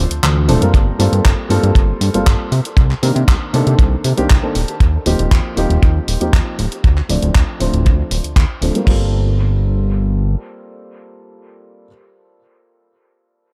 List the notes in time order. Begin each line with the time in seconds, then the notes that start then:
0.10 D2, closed hi-hat
0.23 D2, clap, closed hi-hat, high tom
0.36 high tom
0.48 D1 F3 A3 C4 D4 A4, open hi-hat, mid tom
0.61 G3 A#3 C4 F4 A#4, closed hi-hat, mid tom
0.74 G1, kick, closed hi-hat
0.99 G2 G3 A#3 C4 F4 A4, open hi-hat
1.12 G2, closed hi-hat
1.25 G1, kick, clap, closed hi-hat
1.49 G2 G3 A#3 C4 F4 A4, open hi-hat
1.63 G2, closed hi-hat
1.75 G1, kick, closed hi-hat
2.01 G2, open hi-hat
2.14 G1 G3 A#3 C4 F4 A4, closed hi-hat
2.27 G1, kick, clap, closed hi-hat
2.52 C3, open hi-hat
2.65 closed hi-hat
2.77 C2, kick, closed hi-hat
2.91 clap
3.02 C3 D#3 A#3 C4 D4 A#4, open hi-hat
3.16 C3, closed hi-hat
3.28 C2, kick, clap, closed hi-hat
3.53 C3 D#3 A#3 C4 D4 A4, open hi-hat
3.67 C3, closed hi-hat
3.79 C2, kick, closed hi-hat
4.04 C3, open hi-hat
4.17 C2 D#3 A#3 C4 D4 G4, closed hi-hat
4.30 C2, kick, clap, closed hi-hat
4.43 D#3 A#3 C4 D4 A4
4.55 D#1, open hi-hat
4.68 closed hi-hat
4.80 D#2, kick, closed hi-hat
5.06 D#1 F3 A#3 C4 D#4 G4, open hi-hat
5.19 D#1, closed hi-hat
5.31 D#2, kick, clap, closed hi-hat
5.56 D#1 F3 A#3 C4 D#4 G4, open hi-hat
5.70 D#1, closed hi-hat
5.82 D#2, kick, closed hi-hat
6.08 D#1, open hi-hat
6.20 D#2 F3 A#3 C4 D#4 G4, closed hi-hat
6.33 D#2, kick, clap, closed hi-hat
6.59 D1, open hi-hat
6.72 closed hi-hat
6.84 D2, kick, closed hi-hat
6.98 clap
7.09 D1 F3 A3 C4 D4 D5, open hi-hat
7.22 D1, closed hi-hat
7.35 D2, kick, clap, closed hi-hat
7.59 D1 F3 A3 C4 D4 C5, open hi-hat
7.73 D1, closed hi-hat
7.86 D2, kick, closed hi-hat
8.11 D1, open hi-hat
8.24 D2, closed hi-hat
8.36 D2, kick, clap, closed hi-hat
8.62 D1 F3 A3 C4 D4 A4, open hi-hat
8.75 G3 A#3 C4 F4 A#4, closed hi-hat
8.86 G1 G3 A#3 C4 F4 A4, kick, crash